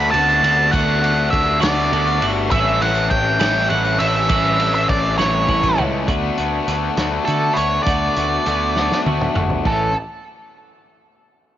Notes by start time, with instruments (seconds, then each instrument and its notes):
Already playing: picked electric bass D2, clean electric guitar D3 A3 B3 F#4, distorted electric guitar D4
0.11 picked electric bass D2, clean electric guitar D3 A3 B3 F#4, distorted electric guitar D4, lead electric guitar A5, ride
0.29 tambourine
0.43 picked electric bass D2, clean electric guitar D3 A3 B3 F#4, distorted electric guitar D4, ride, tambourine
0.71 picked electric bass D2, clean electric guitar D3 A3 B3 F#4, distorted electric guitar D4, lead electric guitar F#5, kick, ride, tambourine
1.01 distorted electric guitar D4 F#4, ride
1.30 picked electric bass D2, lead electric guitar E5, kick, ride
1.60 picked electric bass D2, clean electric guitar D3 A3 B3 F#4, distorted electric guitar D4, lead electric guitar D5, snare, ride, tambourine
1.91 picked electric bass D2, clean electric guitar D3 A3 B3 F#4, distorted electric guitar D4, ride
2.06 tambourine
2.22 picked electric bass G1, clean electric guitar D3 A3 B3 F#4, distorted electric guitar D4, ride
2.50 picked electric bass A1, clean electric guitar E3 G3 C#4 E4, distorted electric guitar A3, lead electric guitar E5, kick, ride, tambourine
2.82 picked electric bass A1, distorted electric guitar A3 C#4, lead electric guitar F#5, ride
2.95 tambourine
3.11 picked electric bass A1, lead electric guitar G5, kick, ride
3.39 picked electric bass A1, clean electric guitar E3 G3 C#4 E4, distorted electric guitar A3, snare, ride, tambourine
3.70 picked electric bass A1, clean electric guitar E3 G3 C#4 E4, distorted electric guitar A3, lead electric guitar F#5, ride
3.85 tambourine
3.99 picked electric bass A1, clean electric guitar E3 G3 C#4 E4, distorted electric guitar A3, lead electric guitar E5, ride
4.29 picked electric bass A1, clean electric guitar E3 G3 C#4 E4, distorted electric guitar A3, kick, ride, tambourine
4.59 distorted electric guitar A3 C#4, ride
4.75 lead electric guitar E5, tambourine
4.89 picked electric bass A1, lead electric guitar D5, kick, ride
5.18 picked electric bass A1, clean electric guitar E3 G3 C#4 E4, distorted electric guitar A3, lead electric guitar C#5, snare, tambourine
5.47 picked electric bass A1, clean electric guitar E3 G3 C#4 E4, distorted electric guitar A3, kick, tambourine
5.63 kick, tambourine
5.77 picked electric bass C#2, clean electric guitar E3 G3 C#4 E4, floor tom, tambourine
5.82 distorted electric guitar A3
6.07 picked electric bass D2, clean electric guitar D3 A3 B3 F#4, distorted electric guitar D4, kick, closed hi-hat
6.37 picked electric bass D2, clean electric guitar A3 B3 F#4, distorted electric guitar D4, closed hi-hat
6.66 picked electric bass D2, clean electric guitar D3 A3 B3 F#4, distorted electric guitar D4, closed hi-hat
6.97 picked electric bass D2, clean electric guitar A3 B3 F#4, distorted electric guitar D4, snare, closed hi-hat
7.25 clean electric guitar D3 A3 F#4, picked electric bass D3, lead electric guitar A4, closed hi-hat
7.29 clean electric guitar B3
7.54 picked electric bass D2, clean electric guitar B3 F#4, lead electric guitar C#5, closed hi-hat
7.58 clean electric guitar A3, distorted electric guitar D4
7.83 clean electric guitar D3 A3, lead electric guitar D5, kick, closed hi-hat
7.87 picked electric bass D2, clean electric guitar B3 F#4, distorted electric guitar D4
8.16 picked electric bass D2, clean electric guitar A3 B3 F#4, distorted electric guitar D4, closed hi-hat
8.46 picked electric bass D2, clean electric guitar D3 A3 B3 F#4, distorted electric guitar D4, closed hi-hat
8.76 clean electric guitar A3 B3 F#4, distorted electric guitar D4, snare
8.91 snare
9.06 picked electric bass D2, clean electric guitar D3 A3 B3 F#4, high tom
9.21 mid tom
9.34 picked electric bass G1, clean electric guitar A3 B3 F#4, distorted electric guitar D4, mid tom
9.50 floor tom
9.65 picked electric bass A1, clean electric guitar A2 E3 A3 C#4 E4, lead electric guitar A4, kick, crash